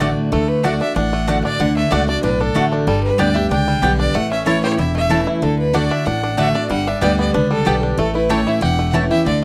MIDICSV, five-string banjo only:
0, 0, Header, 1, 2, 480
1, 0, Start_track
1, 0, Key_signature, 2, "major"
1, 0, Tempo, 319149
1, 486, Time_signature, 4, 2, 24, 8
1, 14201, End_track
2, 0, Start_track
2, 0, Title_t, "Five-string banjo"
2, 0, Program_c, 0, 105
2, 18, Note_on_c, 0, 57, 67
2, 25, Note_on_c, 0, 62, 65
2, 55, Note_off_c, 0, 62, 0
2, 122, Note_off_c, 0, 57, 0
2, 490, Note_on_c, 0, 57, 81
2, 968, Note_on_c, 0, 62, 60
2, 1213, Note_off_c, 0, 62, 0
2, 1219, Note_on_c, 0, 62, 60
2, 1442, Note_off_c, 0, 62, 0
2, 1448, Note_on_c, 0, 62, 74
2, 1694, Note_off_c, 0, 57, 0
2, 1700, Note_on_c, 0, 57, 63
2, 1924, Note_off_c, 0, 62, 0
2, 1930, Note_on_c, 0, 62, 58
2, 2176, Note_off_c, 0, 62, 0
2, 2182, Note_on_c, 0, 62, 62
2, 2360, Note_off_c, 0, 57, 0
2, 2409, Note_on_c, 0, 50, 68
2, 2660, Note_on_c, 0, 57, 62
2, 2884, Note_off_c, 0, 62, 0
2, 2890, Note_on_c, 0, 62, 63
2, 3085, Note_off_c, 0, 50, 0
2, 3121, Note_off_c, 0, 62, 0
2, 3139, Note_on_c, 0, 62, 65
2, 3319, Note_off_c, 0, 57, 0
2, 3348, Note_off_c, 0, 62, 0
2, 3366, Note_on_c, 0, 62, 73
2, 3603, Note_off_c, 0, 62, 0
2, 3621, Note_on_c, 0, 62, 65
2, 3850, Note_on_c, 0, 57, 70
2, 4079, Note_off_c, 0, 62, 0
2, 4097, Note_on_c, 0, 62, 65
2, 4320, Note_off_c, 0, 57, 0
2, 4324, Note_off_c, 0, 62, 0
2, 4326, Note_on_c, 0, 55, 81
2, 4805, Note_on_c, 0, 62, 60
2, 5002, Note_off_c, 0, 55, 0
2, 5050, Note_on_c, 0, 67, 60
2, 5269, Note_off_c, 0, 62, 0
2, 5287, Note_on_c, 0, 62, 72
2, 5533, Note_on_c, 0, 55, 63
2, 5713, Note_off_c, 0, 67, 0
2, 5758, Note_on_c, 0, 50, 62
2, 5962, Note_off_c, 0, 62, 0
2, 6009, Note_on_c, 0, 62, 63
2, 6194, Note_off_c, 0, 55, 0
2, 6238, Note_off_c, 0, 50, 0
2, 6239, Note_off_c, 0, 62, 0
2, 6242, Note_on_c, 0, 57, 82
2, 6491, Note_on_c, 0, 61, 67
2, 6727, Note_on_c, 0, 64, 62
2, 6975, Note_on_c, 0, 67, 60
2, 7020, Note_off_c, 0, 57, 0
2, 7154, Note_off_c, 0, 61, 0
2, 7189, Note_off_c, 0, 64, 0
2, 7207, Note_on_c, 0, 64, 67
2, 7445, Note_on_c, 0, 57, 64
2, 7636, Note_off_c, 0, 67, 0
2, 7684, Note_on_c, 0, 52, 60
2, 7882, Note_off_c, 0, 64, 0
2, 7928, Note_on_c, 0, 64, 65
2, 8111, Note_off_c, 0, 57, 0
2, 8155, Note_off_c, 0, 52, 0
2, 8158, Note_off_c, 0, 64, 0
2, 8161, Note_on_c, 0, 50, 67
2, 8640, Note_on_c, 0, 62, 62
2, 8840, Note_off_c, 0, 50, 0
2, 8875, Note_off_c, 0, 62, 0
2, 8893, Note_on_c, 0, 62, 62
2, 9109, Note_off_c, 0, 62, 0
2, 9127, Note_on_c, 0, 62, 74
2, 9359, Note_off_c, 0, 62, 0
2, 9377, Note_on_c, 0, 62, 63
2, 9606, Note_on_c, 0, 57, 73
2, 9836, Note_off_c, 0, 62, 0
2, 9854, Note_on_c, 0, 62, 66
2, 10078, Note_off_c, 0, 57, 0
2, 10083, Note_off_c, 0, 62, 0
2, 10084, Note_on_c, 0, 55, 85
2, 10339, Note_on_c, 0, 62, 66
2, 10556, Note_off_c, 0, 55, 0
2, 10574, Note_on_c, 0, 55, 62
2, 10815, Note_on_c, 0, 59, 59
2, 11000, Note_off_c, 0, 62, 0
2, 11046, Note_on_c, 0, 62, 73
2, 11248, Note_off_c, 0, 55, 0
2, 11289, Note_on_c, 0, 55, 66
2, 11479, Note_off_c, 0, 59, 0
2, 11527, Note_on_c, 0, 67, 63
2, 11725, Note_off_c, 0, 62, 0
2, 11779, Note_on_c, 0, 62, 62
2, 11956, Note_off_c, 0, 55, 0
2, 12006, Note_off_c, 0, 67, 0
2, 12007, Note_off_c, 0, 62, 0
2, 12011, Note_on_c, 0, 57, 86
2, 12258, Note_on_c, 0, 64, 62
2, 12485, Note_on_c, 0, 67, 58
2, 12718, Note_off_c, 0, 64, 0
2, 12736, Note_on_c, 0, 64, 64
2, 12950, Note_off_c, 0, 67, 0
2, 12968, Note_on_c, 0, 67, 70
2, 13014, Note_off_c, 0, 57, 0
2, 13219, Note_on_c, 0, 57, 67
2, 13401, Note_off_c, 0, 64, 0
2, 13451, Note_on_c, 0, 64, 60
2, 13648, Note_off_c, 0, 67, 0
2, 13701, Note_on_c, 0, 67, 65
2, 13930, Note_off_c, 0, 64, 0
2, 13930, Note_off_c, 0, 67, 0
2, 13937, Note_on_c, 0, 50, 68
2, 14171, Note_off_c, 0, 57, 0
2, 14201, Note_off_c, 0, 50, 0
2, 14201, End_track
0, 0, End_of_file